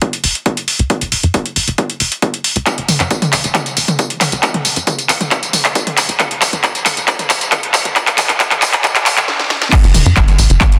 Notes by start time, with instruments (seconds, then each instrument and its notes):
0.02 kick, closed hi-hat
0.13 closed hi-hat
0.24 analog synth bass F#1, open hi-hat
0.35 closed hi-hat
0.46 kick, closed hi-hat
0.57 closed hi-hat
0.68 open hi-hat
0.79 analog synth bass C#2, closed hi-hat
0.90 kick, closed hi-hat
1.01 analog synth bass F#1, closed hi-hat
1.12 analog synth bass E1, open hi-hat
1.23 analog synth bass F#2, closed hi-hat
1.34 analog synth bass F#1, kick, closed hi-hat
1.46 closed hi-hat
1.56 analog synth bass A1, open hi-hat
1.68 analog synth bass F#1, closed hi-hat
1.78 kick, closed hi-hat
1.90 closed hi-hat
2.00 analog synth bass F#1, open hi-hat
2.12 closed hi-hat
2.22 kick, closed hi-hat
2.34 closed hi-hat
2.44 open hi-hat
2.56 analog synth bass C#2, closed hi-hat
2.66 kick, clap, closed hi-hat, tambourine
2.78 analog synth bass F#1, closed hi-hat
2.89 analog synth bass E1, open hi-hat, mid tom, tambourine
3.00 analog synth bass F#2, clap, closed hi-hat, tambourine
3.11 analog synth bass F#1, kick, closed hi-hat, tambourine
3.22 closed hi-hat, mid tom, tambourine
3.33 analog synth bass A1, clap, open hi-hat, tambourine
3.44 analog synth bass F#1, closed hi-hat, tambourine
3.55 kick, clap, closed hi-hat, mid tom, tambourine
3.66 closed hi-hat, tambourine
3.77 analog synth bass F#1, open hi-hat, tambourine
3.88 closed hi-hat, mid tom, tambourine
3.99 kick, closed hi-hat, tambourine
4.10 closed hi-hat
4.21 clap, open hi-hat, mid tom, tambourine
4.32 analog synth bass C#2, closed hi-hat, tambourine
4.43 kick, clap, closed hi-hat, tambourine
4.54 analog synth bass F#1, closed hi-hat, mid tom
4.65 analog synth bass E1, open hi-hat, tambourine
4.76 analog synth bass F#2, closed hi-hat, tambourine
4.87 analog synth bass F#1, kick, closed hi-hat, mid tom, tambourine
4.99 closed hi-hat, tambourine
5.09 analog synth bass A1, clap, open hi-hat, tambourine
5.21 analog synth bass F#1, closed hi-hat, mid tom, tambourine
5.31 kick, clap, closed hi-hat, tambourine
5.43 closed hi-hat, tambourine
5.53 analog synth bass F#1, open hi-hat, mid tom, tambourine
5.65 clap, closed hi-hat, tambourine
5.75 kick, closed hi-hat, tambourine
5.87 closed hi-hat, mid tom
5.97 clap, open hi-hat, tambourine
6.09 analog synth bass C#2, closed hi-hat, tambourine
6.20 kick, clap, closed hi-hat, mid tom, tambourine
6.31 analog synth bass F#1, closed hi-hat
6.41 analog synth bass E1, clap, open hi-hat, tambourine
6.53 analog synth bass F#2, closed hi-hat, mid tom, tambourine
6.64 analog synth bass F#1, kick, clap, closed hi-hat, tambourine
6.75 closed hi-hat, tambourine
6.86 analog synth bass A1, clap, open hi-hat, mid tom, tambourine
6.97 analog synth bass F#1, closed hi-hat, tambourine
7.08 kick, clap, closed hi-hat, tambourine
7.19 closed hi-hat, mid tom, tambourine
7.30 analog synth bass F#1, clap, open hi-hat, tambourine
7.41 closed hi-hat, tambourine
7.52 kick, clap, closed hi-hat, mid tom, tambourine
7.63 closed hi-hat
7.74 clap, open hi-hat, tambourine
7.85 analog synth bass C#2, closed hi-hat, mid tom, tambourine
7.96 kick, clap, closed hi-hat, tambourine
8.07 analog synth bass F#1, clap, closed hi-hat, tambourine
8.18 analog synth bass E1, clap, open hi-hat, mid tom, tambourine
8.29 analog synth bass F#2, clap, closed hi-hat, tambourine
8.40 analog synth bass F#1, kick, clap, closed hi-hat, tambourine
8.51 clap, closed hi-hat, mid tom, tambourine
8.62 analog synth bass A1, clap, open hi-hat, tambourine
8.73 analog synth bass F#1, clap, closed hi-hat, tambourine
8.84 kick, clap, closed hi-hat, mid tom, tambourine
8.95 clap, closed hi-hat, tambourine
9.06 clap, open hi-hat, tambourine
9.17 clap, closed hi-hat, mid tom, tambourine
9.28 snare
9.39 snare
9.50 snare
9.62 snare
9.72 kick, clap, closed hi-hat, tambourine, crash
9.84 analog synth bass F#1, closed hi-hat, tambourine
9.94 analog synth bass E1, open hi-hat, mid tom, tambourine
10.06 analog synth bass F#2, closed hi-hat, tambourine
10.16 analog synth bass F#1, kick, clap, closed hi-hat, tambourine
10.28 closed hi-hat, mid tom, tambourine
10.38 analog synth bass A1, open hi-hat, tambourine
10.50 analog synth bass F#1, closed hi-hat, tambourine
10.61 kick, clap, closed hi-hat, mid tom, tambourine
10.72 closed hi-hat